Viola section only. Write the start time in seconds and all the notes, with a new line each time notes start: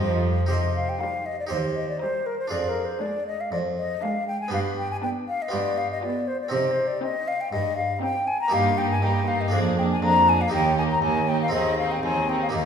Already playing: G4
1.01 G3
2.02 G3
3.02 G#3
4.03 G#3
5.03 B3
6.03 B3
7.03 C4
8.02 C4
8.52 A#3
8.78 A#3
9.02 A#3
9.27 A#3
9.53 A#3
9.78 A#3
10.02 A#3
10.27 A#3
10.52 A#3
10.77 A#3
11.02 A#3
11.27 A#3
11.52 C4
11.77 C4
12.02 C4
12.28 C4
12.53 A#3